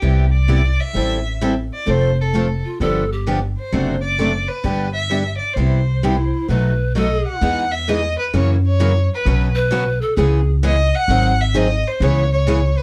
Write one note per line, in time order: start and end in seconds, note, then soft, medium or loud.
0.00 0.76 C2 medium
0.00 0.25 C3 medium
0.00 0.24 G3 medium
0.00 0.24 B3 medium
0.00 0.25 E4 medium
0.00 0.29 G4 medium
0.00 0.25 G4 medium
0.33 0.81 D5 medium
0.48 0.60 C3 medium
0.48 0.60 G3 medium
0.48 0.60 B3 medium
0.48 0.60 E4 medium
0.48 0.61 G4 medium
0.80 1.42 E5 medium
0.93 1.69 A1 medium
0.93 1.16 E3 medium
0.93 1.16 G3 medium
0.93 1.17 C4 medium
0.93 1.17 E4 medium
0.93 1.17 A4 medium
1.41 1.53 E3 medium
1.41 1.53 G3 medium
1.41 1.53 C4 medium
1.41 1.53 E4 medium
1.41 1.53 A4 medium
1.73 1.91 D5 medium
1.86 2.61 F1 medium
1.86 2.09 F3 medium
1.86 2.09 A3 medium
1.86 2.09 C4 medium
1.86 2.09 F4 medium
1.86 2.09 A4 medium
1.90 2.19 C5 medium
2.21 2.62 A4 medium
2.33 2.45 F3 medium
2.33 2.45 A3 medium
2.33 2.45 C4 medium
2.33 2.45 F4 medium
2.33 2.46 A4 medium
2.64 2.82 F4 medium
2.80 3.54 G1 medium
2.80 3.02 D3 medium
2.80 3.03 F3 medium
2.80 3.03 B3 medium
2.80 3.03 D4 medium
2.80 3.03 G4 medium
2.80 3.10 A4 medium
3.12 3.40 G4 medium
3.27 3.38 D3 medium
3.27 3.39 F3 medium
3.27 3.39 B3 medium
3.27 3.38 D4 medium
3.27 3.39 G4 medium
3.58 4.00 C5 medium
3.72 4.46 F#1 medium
3.72 3.94 C3 medium
3.72 3.95 F#3 medium
3.72 3.95 A3 medium
3.72 3.94 C4 medium
3.72 3.95 D4 medium
3.72 3.95 F#4 medium
3.72 3.95 A4 medium
4.01 4.49 D5 medium
4.19 4.30 C3 medium
4.19 4.30 F#3 medium
4.19 4.30 A3 medium
4.19 4.31 C4 medium
4.19 4.31 D4 medium
4.19 4.31 F#4 medium
4.19 4.31 A4 medium
4.47 4.92 B4 medium
4.64 5.38 G1 medium
4.64 4.87 D3 medium
4.64 4.87 G3 medium
4.64 4.88 B3 medium
4.64 4.88 D4 medium
4.64 4.88 G4 medium
4.93 5.36 E5 medium
5.11 5.22 D3 medium
5.11 5.23 G3 medium
5.11 5.22 B3 medium
5.11 5.23 D4 medium
5.11 5.23 G4 medium
5.38 5.56 D5 medium
5.54 6.30 C2 medium
5.54 5.79 G3 medium
5.54 6.48 C5 medium
5.58 5.79 C3 soft
5.58 5.80 B3 medium
5.58 5.80 E4 medium
5.58 5.80 G4 medium
6.03 6.15 C3 medium
6.03 6.15 G3 medium
6.03 6.15 B3 medium
6.03 6.51 E4 medium
6.03 6.15 E4 medium
6.03 6.16 G4 medium
6.48 7.23 B1 medium
6.48 6.71 B2 soft
6.48 6.71 F#3 medium
6.48 6.71 A3 medium
6.48 6.71 D#4 medium
6.48 6.71 F#4 medium
6.48 6.71 B4 medium
6.48 6.95 B4 medium
6.96 7.08 B2 medium
6.96 7.07 F#3 medium
6.96 7.08 A3 medium
6.96 7.08 D#4 medium
6.96 7.08 F#4 medium
6.96 7.38 A4 medium
6.96 7.08 B4 medium
6.96 7.24 D#5 medium
7.27 7.73 F#5 medium
7.41 8.15 E2 medium
7.41 7.63 E3 medium
7.41 7.63 G#3 medium
7.41 7.64 B3 medium
7.41 7.64 D#4 medium
7.41 7.64 G#4 medium
7.72 7.90 E5 medium
7.88 7.99 E3 medium
7.88 8.00 G#3 medium
7.88 8.00 B3 medium
7.88 8.00 D#4 medium
7.88 8.00 G#4 medium
7.88 8.18 D#5 loud
8.19 8.33 B4 medium
8.33 9.07 F#2 medium
8.33 8.55 C#3 medium
8.33 8.55 E3 medium
8.33 8.55 F#3 medium
8.33 8.55 A#3 medium
8.33 8.56 C#4 medium
8.33 8.55 E4 medium
8.33 8.56 F#4 medium
8.33 8.56 A#4 medium
8.33 8.49 C#5 medium
8.67 9.08 C#5 medium
8.80 8.91 C#3 medium
8.80 8.91 E3 medium
8.80 8.91 F#3 medium
8.80 8.91 A#3 medium
8.80 8.91 C#4 medium
8.80 8.91 E4 medium
8.80 8.92 F#4 medium
8.80 8.92 A#4 medium
9.14 9.55 B4 medium
9.25 9.99 B1 medium
9.25 9.47 B2 medium
9.25 9.47 C#3 medium
9.25 9.48 F#3 medium
9.25 9.48 B3 medium
9.25 9.48 C#4 medium
9.25 9.48 F#4 medium
9.25 9.48 B4 medium
9.55 10.03 B4 loud
9.72 9.83 B2 medium
9.72 9.83 C#3 loud
9.72 9.84 F#3 medium
9.72 9.83 B3 medium
9.72 9.83 C#4 medium
9.72 9.83 F#4 loud
9.72 9.84 B4 loud
10.01 10.18 A4 medium
10.16 10.91 C#2 medium
10.16 10.39 C#3 medium
10.16 10.40 E3 medium
10.16 10.39 G#3 medium
10.16 10.39 B3 medium
10.16 10.40 C#4 medium
10.16 10.39 E4 medium
10.16 10.55 G#4 medium
10.16 10.39 G#4 medium
10.63 10.75 C#3 medium
10.63 10.75 E3 medium
10.63 10.75 G#3 medium
10.63 10.75 B3 medium
10.63 10.75 C#4 medium
10.63 10.75 E4 medium
10.63 10.75 G#4 medium
10.63 10.97 D#5 loud
10.96 11.42 F#5 loud
11.08 11.82 G#1 medium
11.08 11.31 D#3 medium
11.08 11.31 F#3 medium
11.08 11.31 C4 medium
11.08 11.31 D#4 medium
11.08 11.31 G#4 medium
11.40 11.58 E5 medium
11.54 11.66 D#3 medium
11.54 11.66 F#3 medium
11.54 11.66 C4 medium
11.54 11.66 D#4 medium
11.54 11.66 G#4 loud
11.54 11.89 D#5 loud
11.87 12.04 C5 medium
12.00 12.74 C#2 medium
12.00 12.23 C#3 medium
12.00 12.23 E3 medium
12.00 12.23 G#3 medium
12.00 12.23 B3 medium
12.00 12.23 C#4 medium
12.00 12.23 E4 medium
12.00 12.23 G#4 medium
12.00 12.32 C#5 loud
12.33 12.79 C#5 loud
12.47 12.59 C#3 medium
12.47 12.59 E3 medium
12.47 12.59 G#3 medium
12.47 12.59 B3 medium
12.47 12.59 C#4 medium
12.47 12.59 E4 medium
12.47 12.59 G#4 loud
12.78 12.83 B4 medium